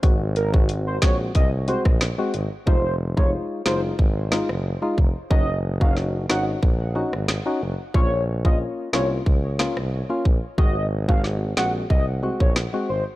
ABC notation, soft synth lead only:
X:1
M:4/4
L:1/16
Q:1/4=91
K:Fphr
V:1 name="Soft synth lead"
z2 B z2 c d z e z c z4 z | c2 z d z2 c z8 z | e2 z f z2 g z8 z | d2 z e z2 d z8 z |
e2 z f z2 g z e z2 d z2 c z |]